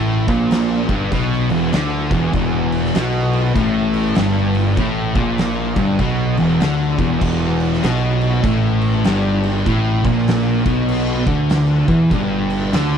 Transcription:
0.00 0.26 A1 medium
0.00 0.27 A2 loud
0.28 0.85 A#1 loud
0.28 0.88 A#2 loud
0.28 kick loud
0.28 crash medium
0.51 snare loud
0.51 crash loud
0.89 1.11 G1 loud
0.89 1.11 G2 loud
0.89 kick loud
0.89 crash medium
1.12 1.47 B1 loud
1.12 1.49 B2 loud
1.12 kick loud
1.12 crash medium
1.32 snare soft
1.50 1.72 E1 loud
1.50 1.72 E2 loud
1.50 crash medium
1.73 2.09 D2 loud
1.73 2.10 D3 loud
1.73 snare loud
1.73 crash medium
2.11 2.32 E1 loud
2.11 2.33 E2 loud
2.11 kick loud
2.11 crash medium
2.33 2.91 E1 medium
2.33 2.94 E2 loud
2.33 kick loud
2.33 crash medium
2.72 crash medium
2.85 snare soft
2.95 3.53 B1 loud
2.95 3.55 B2 loud
2.95 snare loud
2.95 crash loud
3.33 crash medium
3.56 4.13 A1 medium
3.56 4.16 A2 loud
3.56 kick loud
3.56 crash medium
3.94 crash medium
4.15 4.75 G1 medium
4.15 4.77 G2 loud
4.15 snare loud
4.15 crash medium
4.55 crash medium
4.77 5.13 A1 medium
4.77 5.16 A2 loud
4.77 kick loud
4.77 crash medium
5.16 5.73 A#1 loud
5.16 5.76 A#2 loud
5.16 kick loud
5.16 crash medium
5.38 snare loud
5.38 crash medium
5.76 5.98 G1 loud
5.76 5.99 G2 loud
5.76 kick loud
5.76 crash medium
5.99 6.35 B1 loud
5.99 6.37 B2 loud
5.99 kick loud
5.99 crash medium
6.37 6.60 E1 loud
6.37 6.60 E2 loud
6.37 crash medium
6.59 6.97 D2 medium
6.59 6.97 D3 loud
6.59 snare loud
6.59 crash medium
6.99 7.20 E1 loud
6.99 7.21 E2 loud
6.99 kick loud
6.99 crash medium
7.21 7.79 E1 medium
7.21 7.82 E2 loud
7.21 kick loud
7.21 crash loud
7.21 crash medium
7.60 crash medium
7.73 snare soft
7.83 8.41 B1 loud
7.83 8.45 B2 loud
7.83 snare loud
7.83 crash loud
8.21 crash medium
8.44 9.01 A1 medium
8.44 9.05 A2 loud
8.44 kick loud
8.44 crash medium
8.82 crash medium
9.04 9.63 G1 medium
9.04 9.65 G2 loud
9.04 snare loud
9.04 crash medium
9.44 crash medium
9.66 10.02 A1 medium
9.66 10.04 A2 loud
9.66 kick loud
9.66 crash medium
10.05 10.62 A#1 loud
10.05 10.65 A#2 loud
10.05 kick loud
10.05 crash medium
10.18 snare soft
10.28 snare loud
10.28 crash loud
10.66 11.23 B1 medium
10.66 11.26 B2 loud
10.66 kick loud
10.66 crash medium
10.89 crash loud
11.27 11.84 D2 loud
11.27 11.87 D3 loud
11.27 kick loud
11.27 crash medium
11.50 snare loud
11.50 crash medium
11.88 12.10 E2 loud
11.88 12.10 E3 loud
11.88 kick loud
11.88 crash medium
12.11 12.69 G1 medium
12.11 12.72 G2 loud
12.11 kick loud
12.11 crash medium
12.50 crash medium
12.72 12.98 D2 loud
12.72 12.98 D3 loud
12.72 snare loud
12.72 crash loud

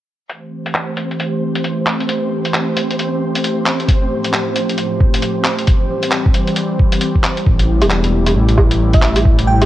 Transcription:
0.29 3.85 E3 medium
0.29 5.64 A3 medium
0.29 7.48 C4 medium
0.29 5.64 C4 medium
0.29 7.43 G4 medium
0.29 7.48 C5 medium
0.29 7.43 C5 medium
0.29 closed hi-hat medium
0.66 closed hi-hat medium
0.75 clap medium
0.97 closed hi-hat medium
1.11 closed hi-hat soft
1.20 closed hi-hat medium
1.55 closed hi-hat medium
1.64 closed hi-hat medium
1.87 clap medium
2.00 closed hi-hat soft
2.09 closed hi-hat medium
2.45 closed hi-hat medium
2.54 clap loud
2.77 closed hi-hat medium
2.90 closed hi-hat soft
2.99 closed hi-hat medium
3.35 closed hi-hat soft
3.44 closed hi-hat medium
3.66 clap loud
3.80 closed hi-hat soft
3.88 5.66 A2 medium
3.88 5.66 F3 medium
3.88 kick loud
3.88 closed hi-hat medium
4.24 closed hi-hat medium
4.33 clap loud
4.56 closed hi-hat soft
4.69 closed hi-hat soft
4.78 closed hi-hat medium
5.00 kick loud
5.14 closed hi-hat medium
5.22 closed hi-hat medium
5.44 clap loud
5.59 closed hi-hat soft
5.67 7.45 E3 medium
5.67 7.45 G3 medium
5.67 7.45 C4 medium
5.67 kick loud
5.67 closed hi-hat medium
6.03 closed hi-hat soft
6.11 clap loud
6.26 kick loud
6.34 closed hi-hat medium
6.47 closed hi-hat soft
6.56 closed hi-hat medium
6.79 kick loud
6.92 closed hi-hat soft
7.01 closed hi-hat medium
7.15 kick medium
7.24 clap loud
7.37 closed hi-hat soft
7.46 7.84 A1 loud
7.46 9.65 C3 medium
7.46 9.65 G3 medium
7.46 9.65 A3 medium
7.46 9.65 E4 medium
7.46 9.65 G4 medium
7.46 kick loud
7.59 closed hi-hat soft
7.82 8.35 E1 medium
7.82 closed hi-hat medium
7.82 low woodblock medium
7.90 clap medium
8.04 closed hi-hat soft
8.27 closed hi-hat medium
8.27 low woodblock soft
8.36 9.25 A1 medium
8.49 closed hi-hat soft
8.58 kick loud
8.58 low woodblock medium
8.71 closed hi-hat medium
8.93 9.18 E5 medium
8.93 kick loud
8.93 closed hi-hat soft
9.02 clap loud
9.16 closed hi-hat medium
9.16 low woodblock soft
9.25 9.62 A1 medium
9.25 kick loud
9.39 closed hi-hat soft
9.47 9.65 G5 medium
9.61 9.65 E1 medium
9.61 closed hi-hat medium
9.61 low woodblock medium

